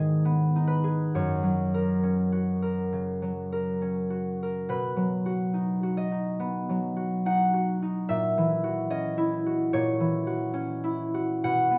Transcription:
harp
Already playing: G#2 D#3 B3 D#4 B4 D#5
0.00 G#4
0.25 B3
0.56 D#4
0.67 B4
0.84 G#4
1.15 F#2 C#5
1.43 F#3
1.74 A#4
2.03 C#4
2.32 F#4
2.62 A#4
2.93 C#3
3.22 F#3
3.52 A#4
3.82 C#4
4.10 F#4
4.43 A#4
4.69 B2 B4
4.96 F#3
5.26 F#4
5.54 D#4
5.83 F#4
5.97 D#5
6.12 D#4
6.40 B3
6.69 F#3
6.97 F#4
7.26 D#4 F#5
7.54 F#4
7.82 D#4
8.09 A#2 E5
8.38 E3
8.64 F#4
8.90 C#4 D#5
9.18 E4
9.46 F#4
9.73 A#2 C#5
10.00 E3
10.27 F#4
10.54 C#4
10.84 E4
11.14 F#4
11.44 B2 F#5
11.71 B3

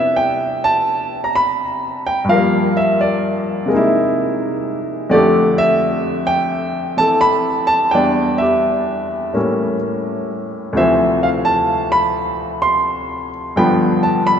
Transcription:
grand piano
Already playing: C3 B3 D4 E4 B4 E5
0.16 G5
0.64 A5
1.24 A#5
1.35 B5
2.07 G5
2.24 G2
2.29 F3 G3 A#4 F5
2.36 A#3
2.77 E5
3.01 D5
3.66 C3 G#3
3.71 A#3 D#4
3.77 E4
5.10 F2 D3 A3 A4 D5
5.14 G4
5.58 E5
6.27 G5
6.97 E3 C4 A4 A5
7.21 B5
7.67 A5
7.91 E2 E3 G3 D4 D5 G5
8.38 G4 E5
9.33 A2 G3 A#3 C#4
10.73 D2 C3 F3 C5
10.77 E3 E5
11.23 F5
11.45 A5
11.92 B5
12.62 C6
13.56 G2 D3 F3 B3 G5 B5
14.03 A5
14.27 B5

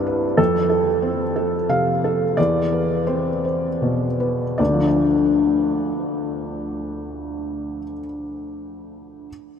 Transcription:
felt piano
Already playing: C2 G2 E4 B4 C5 D5
0.07 B4
0.37 F2 A4
0.70 A4
1.02 C4
1.36 A4
1.69 C3 F5
2.04 A4
2.37 E2 D5
2.72 B4
3.07 C4 C5
3.45 C5
3.82 B2
4.20 B4
4.58 D2 D5
4.66 D3
4.74 F3
4.81 D4
4.87 D5

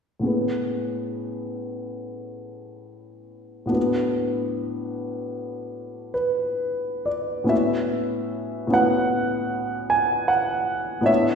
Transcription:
grand piano
0.20 A2 B3 C#4
0.25 G#4 B4
3.66 A2 B3 D4
3.71 F#4 B4
6.14 B4
7.06 D5
7.44 A2 B3 C#4 F#4
7.49 B4 E5
8.67 A2 B3 C#4
8.72 F#4 B4 F#5
9.90 G#5
10.28 F#5
11.01 A2 B3 D4 E4
11.06 C#5 E5

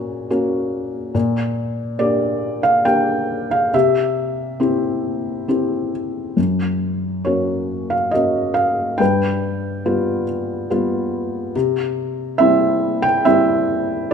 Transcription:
felt piano
Already playing: A#2 A#3 C#4 F#4 A#4 C#5
0.30 A#3 C#4 F#4
1.15 A#2
1.99 A#3 D4 G4 D5
2.63 F5
2.85 A#3 D4 G4 G5
3.51 F5
3.74 C3 G4 E5
4.60 C4 E4 G4
5.48 C4 E4 G4
6.37 F#2
7.25 A#3 C#4 F#4 C#5
7.90 F5
8.11 A#3 C#4 F#4 D#5
8.54 F5
8.98 G2 B4 G5
9.86 G3 B3 F4
10.70 G3 B3 F4
11.56 C3
12.38 G3 C4 E4 E5
13.02 G5
13.25 G3 C4 E4 E5

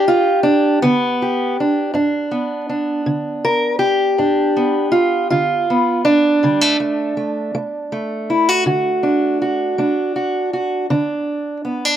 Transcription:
steel-string acoustic guitar
Already playing: G2 G4
0.08 F4
0.43 D4
0.82 D3 B3
1.22 G4
1.60 D4
1.94 G2 D4
2.31 B3
2.69 D4
3.06 D3
3.45 A#4
3.79 G4
4.18 G2 D4
4.57 B3
4.92 F4
5.30 D3 F4
5.70 B3
6.05 D4
6.43 D3 G3
6.61 A3
6.80 A3
7.17 A3
7.55 A3
7.92 A3
8.30 E4
8.49 F#4
8.66 D3 F#4
9.03 D4
9.42 F#4
9.78 A3 D4
10.16 F#4
10.53 F#4
10.90 D3 D4
11.65 B3
11.85 D4

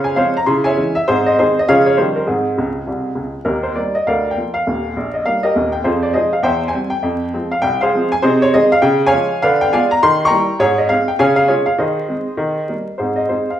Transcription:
upright piano
Already playing: C#3 F4 C5 C#5 F5
0.04 G#5
0.16 F3 G#3 C4 C5 C#5 F5
0.37 A#5
0.46 C#3 E4 C6
0.64 C#5 E5 G#5
0.77 E3 G#3 C#4
0.95 E5
1.08 G#2 C4 D#4 G#4 C5
1.26 D#5
1.39 D#3 G#3 C4 D#4 G#4 C5
1.59 D#5
1.69 C#3 F3 G#3 C#4 F4 G#4 C#5 F5
1.86 C#5
1.97 D#3 F3 G3 C#4 G4 C5
2.16 A#4
2.27 G#2 C4 D#4 G#4
2.58 C#2 C#3
2.87 C2 C3
3.15 C#2 C#3
3.45 D#2 D#4 G4 A#4
3.63 C5
3.75 G3 A#3 D#4 D5
3.95 D#5
4.07 D2 A#4 D5 F5
4.31 G5
4.36 F3 A#3 F4
4.54 F5
4.67 D#1 D#2
4.97 A#1
5.14 D#5
5.26 G3 A#3 D#4 F5
5.43 G4 A#4 D#5
5.55 D#1 D#2
5.72 G5
5.84 F2 F4 G#4 C5
6.03 D5
6.14 F3 G#3 D#4 G#4 C5 D#5
6.33 F5
6.43 E2 C5 E5 G5
6.68 G#5
6.73 G3 C4
6.90 G5
7.03 F2
7.33 F3 G#3 C4
7.51 F5
7.62 C2 G5
7.81 G#4 C5 F5
7.94 F3 G#3 C4
8.12 G#5
8.22 C3 D#4 G#4 C5
8.42 C#5
8.54 D#3 G#3 C4 G#4 C5 D#5
8.72 F5
8.82 C#3 G5
9.06 C#5 F5 G#5
9.13 F3 G#3 F4
9.42 D3 B4 D5 F5
9.61 G5
9.73 G#3 B3 F4 D5 F5 G#5
9.91 A#5
10.03 D#3 C6
10.25 G5 A#5 C#6
10.30 G3 A#3 E4
10.59 G#2 G#4 C#5
10.78 D#5
10.89 G#3 C4 D#4 F5
11.08 G5
11.19 C#3 C#5 F5 G#5
11.36 F5
11.48 G#3 C#4 F4 G#4 C#5
11.66 F5
11.78 D#3 G#4 C5 D#5
12.08 G#3 C4 D#4
12.37 D#3
12.68 G3 A#3 D#4
12.98 G#2 C4 D#4 G#4 C5
13.16 D#5
13.29 G#3 C4 D#4 G#4 C5
13.50 F5

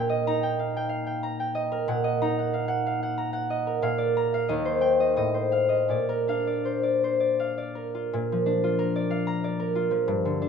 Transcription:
harp
Already playing: A#2 A#4 G5 A#5
0.09 D#5
0.27 D#4 A#5
0.43 G5
0.59 F5
0.77 G5
0.89 F5
1.06 G5
1.23 A#5
1.40 G5
1.55 D#5
1.72 A#4
1.88 A#2 F#5
2.04 D#5
2.22 D#4 A#5
2.39 F#5
2.54 F5
2.68 F#5
2.86 F5
3.03 F#5
3.18 A#5
3.33 F#5
3.50 D#5
3.67 A#4
3.82 A#2 F5
3.98 D5
4.17 A#5
4.34 F5
4.48 D#2 D#5
4.65 C5
4.81 G5
5.00 D#5
5.16 A2 D#5
5.34 C5
5.52 F5
5.69 D#5
5.89 A#2 D5
6.09 A#4
6.28 D4 F5
6.47 D5
6.65 C5
6.83 D5
7.04 C5
7.20 D5
7.40 F5
7.58 D5
7.75 A#4
7.95 F4
8.13 A#2
8.32 F3
8.46 D4
8.64 F4
8.79 A#4
8.96 D5
9.10 F5
9.27 A#5
9.44 D5
9.60 A#4
9.75 F4
9.91 F3
10.08 G2
10.25 D3
10.42 D4

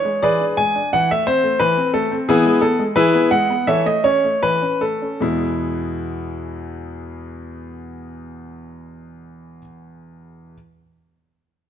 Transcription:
grand piano
Already playing: C#5
0.05 G#3
0.23 E3 G#4 B4 D5
0.41 D4
0.57 G#3 G#5
0.76 D4
0.93 E3 F#5
1.10 A3 E5
1.27 C4 C5
1.44 A3
1.60 E3 B4
1.77 C4
1.94 A3 A4
2.11 C4
2.29 E3 B3 E4 G#4
2.46 G#3
2.61 B3 A4
2.79 G#3
2.96 E3 E4 G#4 B4
3.14 B3
3.31 G#3 F#5
3.50 B3
3.67 E3 A4 C#5 E5
3.86 A3 D#5
4.04 C#4 C#5
4.25 A3
4.43 E3 B4
4.62 C#4
4.81 A3 A4
5.02 C#4
5.20 E2 B2 G#3 B3 E4

